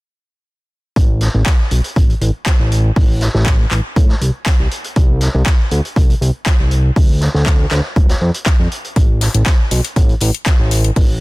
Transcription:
0.96 1.28 A1 medium
0.96 kick loud
0.96 closed hi-hat medium
1.21 snare soft
1.21 closed hi-hat medium
1.34 1.43 A1 medium
1.46 kick loud
1.46 snare loud
1.46 clap loud
1.46 closed hi-hat medium
1.71 1.81 B1 medium
1.71 closed hi-hat medium
1.84 closed hi-hat soft
1.96 2.15 A1 medium
1.96 kick loud
1.96 closed hi-hat medium
2.10 closed hi-hat soft
2.21 2.31 A1 medium
2.21 closed hi-hat medium
2.46 kick loud
2.46 snare loud
2.46 clap loud
2.46 closed hi-hat medium
2.60 2.91 A1 medium
2.72 closed hi-hat medium
2.96 3.28 A1 medium
2.96 kick loud
2.96 open hi-hat medium
3.21 snare medium
3.21 closed hi-hat medium
3.35 3.66 A1 loud
3.35 snare medium
3.46 kick loud
3.46 snare loud
3.46 clap loud
3.46 closed hi-hat medium
3.71 3.81 A1 medium
3.71 clap medium
3.71 closed hi-hat medium
3.96 4.15 A2 medium
3.96 kick loud
3.96 closed hi-hat medium
4.09 snare soft
4.21 4.31 C2 medium
4.21 closed hi-hat medium
4.46 kick loud
4.46 snare loud
4.46 clap loud
4.46 closed hi-hat medium
4.60 4.68 C2 medium
4.71 closed hi-hat medium
4.84 closed hi-hat soft
4.96 5.28 C2 medium
4.96 kick loud
4.96 closed hi-hat medium
5.21 snare medium
5.21 closed hi-hat medium
5.35 5.43 C2 medium
5.46 kick loud
5.46 snare loud
5.46 clap loud
5.46 closed hi-hat medium
5.71 5.81 D2 medium
5.71 closed hi-hat medium
5.85 closed hi-hat soft
5.96 6.15 C2 medium
5.96 kick loud
5.96 closed hi-hat medium
6.10 closed hi-hat soft
6.21 6.31 C2 medium
6.21 closed hi-hat medium
6.46 kick loud
6.46 snare loud
6.46 clap loud
6.46 closed hi-hat medium
6.59 6.91 C2 medium
6.71 closed hi-hat medium
6.96 7.28 D2 medium
6.96 kick loud
6.96 open hi-hat medium
7.21 snare soft
7.21 closed hi-hat medium
7.35 7.66 D2 loud
7.35 snare soft
7.45 kick loud
7.45 snare loud
7.45 clap loud
7.45 closed hi-hat medium
7.71 7.81 D2 medium
7.71 snare loud
7.71 clap medium
7.71 closed hi-hat medium
7.96 8.15 D1 medium
7.96 kick loud
7.96 closed hi-hat medium
8.09 snare loud
8.09 closed hi-hat medium
8.21 8.31 F2 medium
8.34 closed hi-hat medium
8.46 kick loud
8.46 snare loud
8.46 clap loud
8.46 closed hi-hat medium
8.60 8.68 F2 medium
8.72 closed hi-hat medium
8.84 closed hi-hat soft
8.96 9.28 A1 loud
8.96 kick loud
8.96 closed hi-hat soft
8.96 closed hi-hat medium
9.21 snare soft
9.21 closed hi-hat medium
9.21 open hi-hat medium
9.34 9.43 A1 medium
9.34 closed hi-hat medium
9.46 kick loud
9.46 snare loud
9.46 clap loud
9.46 closed hi-hat soft
9.46 closed hi-hat medium
9.71 9.81 B1 medium
9.71 closed hi-hat medium
9.71 open hi-hat medium
9.84 closed hi-hat soft
9.84 closed hi-hat medium
9.96 10.15 A1 medium
9.96 kick loud
9.96 closed hi-hat soft
9.96 closed hi-hat medium
10.09 closed hi-hat soft
10.20 10.31 A1 medium
10.20 closed hi-hat medium
10.20 open hi-hat loud
10.34 closed hi-hat medium
10.46 kick loud
10.46 snare loud
10.46 clap loud
10.46 closed hi-hat soft
10.46 closed hi-hat medium
10.60 10.91 A1 medium
10.71 closed hi-hat medium
10.71 open hi-hat medium
10.84 closed hi-hat medium
10.96 11.20 A1 medium
10.96 kick loud
10.96 closed hi-hat soft
10.96 open hi-hat medium

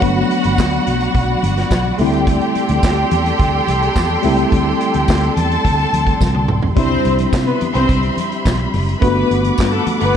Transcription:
0.00 0.22 G1 loud
0.00 1.94 F#3 medium
0.00 1.95 A3 medium
0.00 1.95 B3 medium
0.00 1.96 D4 medium
0.00 1.94 F#4 medium
0.00 1.96 F#4 medium
0.00 6.73 D5 medium
0.00 1.95 F#5 medium
0.00 1.95 B5 loud
0.00 kick loud
0.00 closed hi-hat medium
0.00 muted conga soft
0.31 closed hi-hat medium
0.31 muted conga soft
0.44 0.54 G1 loud
0.44 closed hi-hat soft
0.44 high conga soft
0.58 0.78 D2 medium
0.58 kick loud
0.58 snare loud
0.58 clap medium
0.58 tambourine loud
0.73 closed hi-hat soft
0.87 1.07 B1 medium
0.87 closed hi-hat medium
0.87 high conga medium
1.01 closed hi-hat soft
1.15 1.34 B1 medium
1.15 kick loud
1.15 closed hi-hat medium
1.15 low conga medium
1.43 1.63 G1 medium
1.43 closed hi-hat medium
1.43 muted conga soft
1.43 high conga medium
1.57 snare soft
1.57 closed hi-hat soft
1.71 1.90 B1 loud
1.71 kick medium
1.71 snare medium
1.71 clap medium
1.71 tambourine loud
1.71 muted conga soft
1.71 high conga medium
1.98 2.38 D2 medium
1.98 4.20 G3 medium
1.98 4.20 A3 medium
1.98 4.21 C4 medium
1.98 4.21 E4 medium
1.98 5.32 G4 medium
1.98 6.73 A4 medium
1.98 5.32 G5 medium
1.98 6.73 G5 medium
1.98 6.73 C6 medium
1.98 open hi-hat medium
1.98 low conga medium
2.13 closed hi-hat soft
2.27 kick loud
2.27 closed hi-hat medium
2.41 closed hi-hat soft
2.55 closed hi-hat medium
2.55 muted conga soft
2.69 2.79 D2 loud
2.69 closed hi-hat soft
2.69 high conga soft
2.83 3.03 D2 medium
2.83 kick loud
2.83 snare loud
2.83 clap medium
2.83 tambourine loud
3.11 3.31 E2 medium
3.11 closed hi-hat medium
3.11 muted conga soft
3.11 high conga medium
3.26 closed hi-hat soft
3.39 3.59 D2 medium
3.39 kick loud
3.39 closed hi-hat medium
3.39 muted conga soft
3.39 low conga medium
3.68 3.88 C2 medium
3.68 closed hi-hat medium
3.68 high conga medium
3.82 closed hi-hat soft
3.96 4.16 E2 medium
3.96 kick loud
3.96 snare medium
3.96 clap medium
3.96 tambourine loud
3.96 muted conga soft
3.96 high conga medium
4.23 4.44 C#2 medium
4.23 6.44 G3 medium
4.23 6.45 A3 medium
4.23 6.45 C4 medium
4.23 6.46 E4 medium
4.23 open hi-hat medium
4.23 low conga medium
4.38 closed hi-hat soft
4.52 4.72 D2 loud
4.52 kick loud
4.52 closed hi-hat medium
4.52 muted conga soft
4.81 closed hi-hat medium
4.94 5.04 D2 medium
4.94 closed hi-hat soft
4.94 high conga soft
5.08 5.28 D2 medium
5.08 kick loud
5.08 snare loud
5.08 clap medium
5.08 tambourine medium
5.08 muted conga soft
5.23 closed hi-hat soft
5.36 5.56 E2 loud
5.36 6.46 A4 medium
5.36 6.47 A5 medium
5.36 closed hi-hat medium
5.36 high conga medium
5.52 closed hi-hat soft
5.65 5.84 D2 medium
5.65 kick loud
5.65 closed hi-hat medium
5.65 muted conga soft
5.65 low conga medium
5.79 closed hi-hat soft
5.93 6.12 D2 medium
5.93 closed hi-hat medium
5.93 high conga medium
6.07 kick medium
6.07 closed hi-hat soft
6.21 6.50 C2 medium
6.21 kick loud
6.21 snare soft
6.21 tambourine loud
6.21 muted conga soft
6.21 high conga medium
6.35 high tom medium
6.48 6.69 B1 medium
6.48 mid tom medium
6.48 low conga medium
6.62 floor tom medium
6.76 6.96 C2 medium
6.76 8.97 G3 medium
6.76 10.17 G3 medium
6.76 8.98 C4 medium
6.76 7.30 C4 medium
6.76 8.98 D4 medium
6.76 8.99 E4 medium
6.76 7.29 C5 loud
6.76 9.00 E5 medium
6.76 10.17 B5 medium
6.76 9.00 C6 medium
6.76 kick loud
6.76 closed hi-hat medium
7.05 7.25 C2 medium
7.05 closed hi-hat medium
7.18 closed hi-hat soft
7.18 high conga soft
7.33 7.53 C3 medium
7.33 kick loud
7.33 snare loud
7.33 clap medium
7.33 tambourine loud
7.33 muted conga soft
7.46 7.58 B3 medium
7.46 7.58 B4 medium
7.61 closed hi-hat medium
7.61 muted conga soft
7.61 high conga medium
7.74 7.85 C2 loud
7.74 8.14 C4 medium
7.74 8.14 C5 loud
7.74 closed hi-hat soft
7.89 8.09 C2 medium
7.89 kick loud
7.89 closed hi-hat medium
7.89 low conga medium
8.03 closed hi-hat soft
8.17 closed hi-hat medium
8.17 muted conga soft
8.17 high conga medium
8.32 closed hi-hat soft
8.45 8.65 B1 loud
8.45 kick medium
8.45 snare loud
8.45 clap medium
8.45 tambourine loud
8.45 high conga medium
8.74 8.93 F#1 loud
8.74 open hi-hat medium
8.74 muted conga soft
8.74 low conga medium
8.89 closed hi-hat soft
8.99 9.22 G1 loud
8.99 10.17 A3 medium
8.99 9.54 B3 medium
8.99 10.17 B3 medium
8.99 10.17 D4 medium
8.99 9.54 B4 loud
8.99 10.17 F#5 medium
8.99 10.17 D6 medium
8.99 kick loud
8.99 closed hi-hat medium
9.04 10.17 F#4 medium
9.31 9.50 G1 loud
9.31 closed hi-hat medium
9.31 muted conga soft
9.44 closed hi-hat soft
9.44 high conga soft
9.58 9.78 G2 loud
9.58 kick loud
9.58 snare loud
9.58 clap medium
9.58 tambourine loud
9.72 9.83 A3 medium
9.72 9.83 A4 medium
9.72 closed hi-hat soft
9.87 closed hi-hat medium
9.87 muted conga soft
9.87 high conga medium
10.00 10.11 G1 medium
10.00 10.17 B3 medium
10.00 10.17 B4 medium
10.00 closed hi-hat soft

